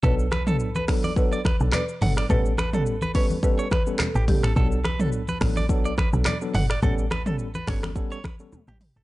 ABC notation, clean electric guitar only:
X:1
M:4/4
L:1/16
Q:"Swing 16ths" 1/4=106
K:Bm
V:1 name="Clean electric guitar"
A z B A z B z d z d B z d z f d | A z B A z B c z2 c B z2 G z A | A z B A z B z d z d B z d z f d | A z B A z B c z2 c B z2 G z A |]